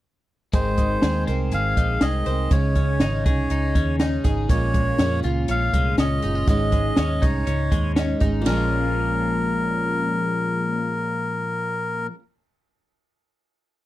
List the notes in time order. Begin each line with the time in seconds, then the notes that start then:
0.53 G#1 G#3 C4 D#4 A#4 C5, kick, closed hi-hat
0.78 D#4, kick, closed hi-hat
1.02 D#2 G#3 C4 D#4 G#4, snare, closed hi-hat
1.06 A#4
1.27 C2 C4 D#4 A#4 C5, closed hi-hat
1.52 G#1 G#4 F5, closed hi-hat
1.77 A#1 D#4, kick, closed hi-hat
2.01 C2 G#3 C4 D#4 G#4 D#5, snare, closed hi-hat
2.05 A#4
2.26 C2 C4 D#4 A#4 C5, closed hi-hat
2.51 C#2 C#3 G#3 C#4 D#4 G#4 C#5, kick, closed hi-hat
2.75 C#4, kick, closed hi-hat
3.00 G#1 G#3 C#4 D#4 G#4, snare, closed hi-hat
3.26 C2 C#4 D#4 G#4 C#5, kick, closed hi-hat
3.50 C#2 D#4, closed hi-hat
3.75 D#2 C#4, kick, closed hi-hat
3.99 G#3 C#4 D#4 G#4, snare, closed hi-hat
4.24 G#1 C#4 D#4 G#4, kick, closed hi-hat
4.49 A#1 A#2 G#3 C#4 F4 G#4 C#5, kick, closed hi-hat
4.74 G#3, kick, closed hi-hat
4.98 F2 G#3 C#4 F4 G#4, snare, closed hi-hat
5.23 C#2 C#4 F4 G#4, closed hi-hat
5.48 A#1 C#4 F5, closed hi-hat
5.73 C2 G#3, kick, closed hi-hat
5.97 C#2 G#3 C#4 F4 G#4 D#5, snare, closed hi-hat
6.22 F#1 C#4 D#4 F4 G#4, closed hi-hat
6.35 F4
6.47 G#1 G#2 C#3 G#3 C#4 D#4 G#4 D#5, kick, closed hi-hat
6.72 G#3, kick, closed hi-hat
6.96 D#2 G#3 C#4 D#4 G#4, snare, closed hi-hat
7.22 C2 G#3 C#4 D#4 G#4 C#5, kick, closed hi-hat
7.47 C#2 C#4, closed hi-hat
7.72 D#2 G#3, kick, closed hi-hat
7.96 G#3 C#4 D#4 G#4, snare, closed hi-hat
8.20 G#1 G#3 C#4 D#4 G#4, kick, closed hi-hat
8.42 A#2 F3
8.46 A#1 G#3 A#4, snare, ride bell
8.52 C#4 G#4
8.57 F4